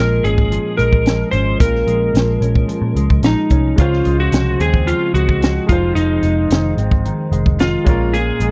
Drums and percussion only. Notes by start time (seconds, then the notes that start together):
0.25 closed hi-hat
0.38 kick
0.52 closed hi-hat
0.79 closed hi-hat
0.93 kick
1.06 snare, closed hi-hat
1.33 closed hi-hat
1.60 kick, closed hi-hat
1.75 snare
1.88 closed hi-hat
2.15 snare, closed hi-hat
2.42 closed hi-hat
2.55 kick
2.69 closed hi-hat
2.96 closed hi-hat
3.10 kick
3.23 snare, closed hi-hat
3.50 kick, closed hi-hat
3.78 kick, closed hi-hat
3.93 snare
4.05 closed hi-hat
4.32 snare, closed hi-hat
4.60 closed hi-hat
4.74 kick
4.88 closed hi-hat
5.15 closed hi-hat
5.29 kick
5.42 snare, closed hi-hat
5.69 kick, closed hi-hat
5.96 closed hi-hat
6.23 closed hi-hat
6.51 snare, closed hi-hat
6.78 closed hi-hat
6.91 kick
7.06 closed hi-hat
7.33 closed hi-hat
7.46 kick
7.59 snare, closed hi-hat
7.86 kick, closed hi-hat
8.14 closed hi-hat
8.40 closed hi-hat